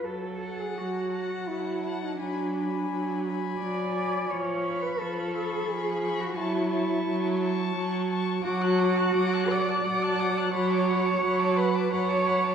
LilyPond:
<<
  \new Staff \with { instrumentName = "Violin" } { \time 3/4 \key fis \minor \tempo 4 = 86 r8 a''4 a''4 a''8 | b''8 b''4 b''4 b''8 | r8 cis'''4 cis'''4 cis'''8 | cis'''8 cis'''4 cis'''4 cis'''8 |
\key d \lydian d'''16 fis'''16 d'''16 fis'''16 d'''16 fis'''16 d'''16 fis'''16 d'''16 fis'''16 d'''16 fis'''16 | b''16 d'''16 b''16 d'''16 b''16 d'''16 b''16 d'''16 b''16 d'''16 b''16 d'''16 | }
  \new Staff \with { instrumentName = "Violin" } { \time 3/4 \key fis \minor r8 fis''4 fis''4 fis''8 | gis''8 gis''4 gis''4 gis''8 | r8 b''4 b''4 b''8 | a''8 a''4 a''4 a''8 |
\key d \lydian fis''16 a''16 fis''16 a''16 fis''16 a''16 fis''16 a''16 fis''16 a''16 fis''16 a''16 | fis''16 a''16 fis''16 a''16 fis''16 a''16 fis''16 a''16 fis''16 a''16 fis''16 a''16 | }
  \new Staff \with { instrumentName = "Cello" } { \time 3/4 \key fis \minor a'8. gis'16 fis'4 e'8. dis'16 | d'4. r8 d''4 | cis''8. b'16 a'4 gis'8. fis'16 | e'4. r4. |
\key d \lydian fis'4. d''4. | cis''4. b'8 cis''4 | }
  \new Staff \with { instrumentName = "Viola" } { \clef bass \time 3/4 \key fis \minor fis4 fis4 fis4 | fis4 fis4 fis4 | eis4 eis4 eis4 | fis4 fis4 fis4 |
\key d \lydian fis4 fis4 fis4 | fis4 fis4 fis4 | }
>>